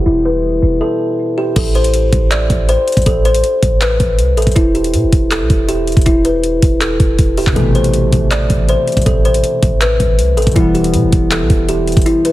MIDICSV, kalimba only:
0, 0, Header, 1, 2, 480
1, 0, Start_track
1, 0, Key_signature, 0, "minor"
1, 0, Tempo, 375000
1, 79, Time_signature, 4, 2, 24, 8
1, 15773, End_track
2, 0, Start_track
2, 0, Title_t, "Kalimba"
2, 0, Program_c, 0, 108
2, 75, Note_on_c, 0, 64, 87
2, 305, Note_off_c, 0, 64, 0
2, 323, Note_on_c, 0, 71, 76
2, 998, Note_off_c, 0, 71, 0
2, 1036, Note_on_c, 0, 69, 82
2, 1715, Note_off_c, 0, 69, 0
2, 1762, Note_on_c, 0, 67, 85
2, 1989, Note_off_c, 0, 67, 0
2, 1997, Note_on_c, 0, 69, 92
2, 2226, Note_off_c, 0, 69, 0
2, 2245, Note_on_c, 0, 72, 82
2, 2919, Note_off_c, 0, 72, 0
2, 2955, Note_on_c, 0, 74, 89
2, 3409, Note_off_c, 0, 74, 0
2, 3444, Note_on_c, 0, 72, 92
2, 3893, Note_off_c, 0, 72, 0
2, 3918, Note_on_c, 0, 69, 83
2, 4147, Note_off_c, 0, 69, 0
2, 4165, Note_on_c, 0, 72, 87
2, 4839, Note_off_c, 0, 72, 0
2, 4879, Note_on_c, 0, 71, 87
2, 5556, Note_off_c, 0, 71, 0
2, 5598, Note_on_c, 0, 69, 88
2, 5827, Note_off_c, 0, 69, 0
2, 5833, Note_on_c, 0, 64, 96
2, 6064, Note_off_c, 0, 64, 0
2, 6077, Note_on_c, 0, 67, 82
2, 6755, Note_off_c, 0, 67, 0
2, 6799, Note_on_c, 0, 69, 87
2, 7251, Note_off_c, 0, 69, 0
2, 7277, Note_on_c, 0, 67, 88
2, 7729, Note_off_c, 0, 67, 0
2, 7754, Note_on_c, 0, 64, 91
2, 7985, Note_off_c, 0, 64, 0
2, 7999, Note_on_c, 0, 71, 82
2, 8676, Note_off_c, 0, 71, 0
2, 8715, Note_on_c, 0, 69, 87
2, 9394, Note_off_c, 0, 69, 0
2, 9443, Note_on_c, 0, 67, 88
2, 9669, Note_off_c, 0, 67, 0
2, 9677, Note_on_c, 0, 69, 92
2, 9906, Note_off_c, 0, 69, 0
2, 9923, Note_on_c, 0, 72, 80
2, 10598, Note_off_c, 0, 72, 0
2, 10636, Note_on_c, 0, 74, 89
2, 11089, Note_off_c, 0, 74, 0
2, 11125, Note_on_c, 0, 72, 93
2, 11574, Note_off_c, 0, 72, 0
2, 11598, Note_on_c, 0, 69, 81
2, 11827, Note_off_c, 0, 69, 0
2, 11845, Note_on_c, 0, 72, 81
2, 12519, Note_off_c, 0, 72, 0
2, 12561, Note_on_c, 0, 71, 87
2, 13237, Note_off_c, 0, 71, 0
2, 13277, Note_on_c, 0, 69, 85
2, 13506, Note_off_c, 0, 69, 0
2, 13513, Note_on_c, 0, 64, 94
2, 13744, Note_off_c, 0, 64, 0
2, 13755, Note_on_c, 0, 67, 82
2, 14434, Note_off_c, 0, 67, 0
2, 14482, Note_on_c, 0, 69, 85
2, 14932, Note_off_c, 0, 69, 0
2, 14959, Note_on_c, 0, 67, 90
2, 15410, Note_off_c, 0, 67, 0
2, 15436, Note_on_c, 0, 64, 93
2, 15666, Note_off_c, 0, 64, 0
2, 15681, Note_on_c, 0, 71, 83
2, 15773, Note_off_c, 0, 71, 0
2, 15773, End_track
0, 0, End_of_file